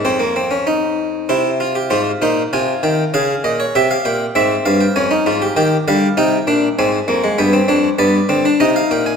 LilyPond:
<<
  \new Staff \with { instrumentName = "Harpsichord" } { \time 3/4 \key f \minor \tempo 4 = 98 << { c''2 c''4 | c''8 c''8 aes''8 g''8 f''8 ees''16 des''16 | e''16 f''16 g''8 e''8 f''16 g''16 aes''4 | g''8 f''8 g''4 aes''4 |
g''4 d''4 ees''16 f''16 g''16 aes''16 | } \\ { c'16 bes16 c'16 des'16 ees'4 e'8 f'16 g'16 | f'8 ees'8 f'4 aes'4 | g'4 c'4 des'16 ees'16 f'16 g'16 | g'8 g8 ees'8 d'8 c'8 bes16 aes16 |
b16 c'16 d'8 b8 c'16 d'16 ees'4 | } >> }
  \new Staff \with { instrumentName = "Harpsichord" } { \clef bass \time 3/4 \key f \minor f,2 c4 | aes,8 bes,8 c8 ees8 des8 bes,8 | c8 bes,8 aes,8 g,8 f,8 aes,8 | ees8 d8 c8 bes,8 aes,8 f,8 |
g,8 f,8 g,8 d8 c8 bes,8 | }
>>